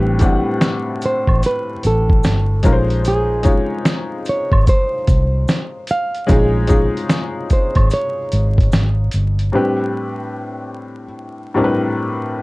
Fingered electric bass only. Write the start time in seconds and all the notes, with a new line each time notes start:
Already playing: A1
1.28 A1
1.85 A1
2.25 G1
2.65 A#1
4.52 G#1
5.09 C2
6.30 A#1
7.76 G#1
8.33 G#1
8.73 G#1
9.14 G1